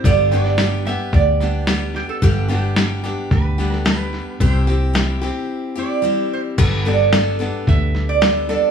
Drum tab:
CC |----------------|----------------|----------------|x---------------|
HH |----p-------p---|----p-------p---|----p-----------|----p-------p---|
SD |o-ooo-o-o-o-o-o-|o-o-o-o-o-ooo-o-|o-o-o-o---------|o-o-o-o-o-o-o-o-|
BD |o-------o-------|o-------o-------|o---------------|o-------o-------|